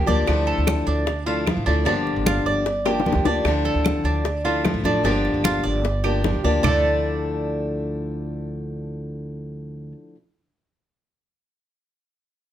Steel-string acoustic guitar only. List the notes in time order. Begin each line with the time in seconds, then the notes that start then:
0.06 F3 A#3 D4 G4
0.26 D3 F3 A3 D4 E4
1.07 muted steel-string acoustic guitar stroke
1.26 F3 A3 D4 E4
1.47 F3 A3 D4 E4
1.67 F3 A3 D4 E4
1.85 D3 F3 A#3 D4 G4
2.66 muted steel-string acoustic guitar stroke
2.85 F3 A#3 D4 G4
3.05 F3 A#3 D4 G4
3.25 F3 A#3 D4 G4
3.46 D3 F3 A3 D4 E4
4.25 muted steel-string acoustic guitar stroke
4.44 F3 A3 D4 E4
4.64 F3 A3 D4 E4
4.84 F3 A3 D4 E4
5.04 D3 F3 A#3 D4 G4
5.84 muted steel-string acoustic guitar stroke
6.04 F3 A#3 D4 G4
6.24 F3 A#3 D4 G4
6.44 F3 A#3 D4 G4
6.65 D3 F3 A3 D4 E4